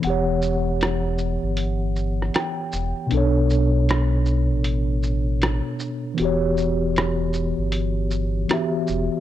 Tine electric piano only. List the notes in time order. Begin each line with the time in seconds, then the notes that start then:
0.00 E3 B3
0.05 G4 F#5
0.10 C#5
2.35 G5
3.07 B2 B3
3.12 D4 A4
3.17 C#5
6.14 E3 B3
6.19 F#4 G4
6.25 C#5
8.48 E3 B3 F#4
8.52 G4 E5